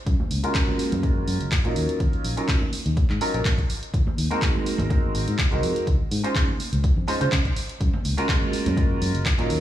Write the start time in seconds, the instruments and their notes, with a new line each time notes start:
0.06 fingered electric bass F#2, kick, closed hi-hat
0.20 high conga
0.31 fingered electric bass C#2, open hi-hat, shaker
0.43 grand piano G#3 C#4 F4 F#4 A#4, closed hi-hat, shaker
0.55 grand piano G#3 C#4, kick, clap, closed hi-hat
0.69 high conga
0.79 muted fingered electric bass stroke, open hi-hat, shaker
0.92 fingered electric bass F#2, closed hi-hat, high conga, shaker
1.03 grand piano G#3 C#4 F4 F#4 A#4, kick, closed hi-hat, shaker
1.28 fingered electric bass F#2, open hi-hat, shaker
1.41 fingered electric bass F#1, closed hi-hat, shaker
1.52 kick, clap, closed hi-hat, shaker
1.64 fingered electric bass A#2, grand piano F#3 C#4 D#4 F4 A#4, closed hi-hat, shaker
1.76 fingered electric bass D#2, open hi-hat
1.89 closed hi-hat, shaker
2.00 fingered electric bass D#2, kick, closed hi-hat
2.13 muted fingered electric bass stroke, closed hi-hat
2.24 fingered electric bass A#1, open hi-hat, shaker
2.37 grand piano F#3 C#4 D#4 F4 A#4, closed hi-hat
2.48 grand piano F#3 C#4 D#4 F4 A#4, kick, clap, closed hi-hat
2.62 high conga, shaker
2.73 muted fingered electric bass stroke, open hi-hat, shaker
2.86 fingered electric bass D#2, closed hi-hat, shaker
2.97 kick, closed hi-hat
3.10 fingered electric bass G#2, clap
3.21 grand piano F#3 C#4 D#4 F4 A#4, open hi-hat, shaker
3.34 fingered electric bass A#1, grand piano F#3 C#4 D#4 F4 A#4, closed hi-hat
3.45 fingered electric bass A#1, kick, clap, closed hi-hat
3.58 kick, closed hi-hat
3.70 open hi-hat, shaker
3.83 closed hi-hat, shaker
3.94 fingered electric bass G#1, kick, closed hi-hat, shaker
4.07 high conga
4.18 fingered electric bass D#2, open hi-hat, shaker
4.30 grand piano G#3 C4 D#4 F#4 A#4, closed hi-hat, shaker
4.42 grand piano G#3, kick, clap, closed hi-hat
4.55 high conga
4.66 muted fingered electric bass stroke, open hi-hat, shaker
4.78 fingered electric bass G#1, closed hi-hat, high conga, shaker
4.89 grand piano G#3 C4 D#4 F#4 A#4, kick, closed hi-hat, shaker
5.15 fingered electric bass G#1, open hi-hat, shaker
5.28 fingered electric bass G#2, closed hi-hat, shaker
5.39 kick, clap, closed hi-hat
5.51 fingered electric bass C2, grand piano G#3 C4 D#4 F#4 A#4, closed hi-hat
5.63 fingered electric bass F2, open hi-hat, shaker
5.75 closed hi-hat, shaker
5.86 fingered electric bass C#2, kick, closed hi-hat, shaker
6.00 muted fingered electric bass stroke
6.11 fingered electric bass G#2, open hi-hat, shaker
6.23 grand piano G#3 C#4 D#4 F4 C5, closed hi-hat, shaker
6.35 grand piano G#3 C#4 D#4 F4 C5, kick, clap, closed hi-hat
6.48 high conga
6.60 muted fingered electric bass stroke, open hi-hat, shaker
6.73 fingered electric bass C#2, closed hi-hat, shaker
6.84 kick, closed hi-hat, shaker
6.97 fingered electric bass F2
7.07 grand piano G#3 C#4 D#4 F4 C5, open hi-hat, shaker
7.20 fingered electric bass C#3, grand piano G#3 C#4 D#4 F4 C5, closed hi-hat, shaker
7.32 fingered electric bass C#3, kick, clap, closed hi-hat
7.45 kick, closed hi-hat, shaker
7.56 open hi-hat, shaker
7.69 closed hi-hat, shaker
7.81 fingered electric bass F#2, kick, closed hi-hat, shaker
7.94 high conga
8.05 fingered electric bass C#2, open hi-hat, shaker
8.17 grand piano G#3 C#4 F4 F#4 A#4, closed hi-hat, shaker
8.28 grand piano G#3 C#4 F4 F#4 A#4, kick, clap, closed hi-hat, shaker
8.42 high conga
8.53 muted fingered electric bass stroke, open hi-hat, shaker
8.66 fingered electric bass F#2, closed hi-hat, high conga, shaker
8.77 grand piano G#3 C#4 F4 F#4 A#4, kick, closed hi-hat, shaker
9.02 fingered electric bass F#2, open hi-hat, shaker
9.14 fingered electric bass F#1, closed hi-hat, shaker
9.26 kick, clap, closed hi-hat, shaker
9.38 fingered electric bass A#2, grand piano F#3 C#4 D#4 F4 A#4, closed hi-hat, shaker
9.50 fingered electric bass D#2, open hi-hat, shaker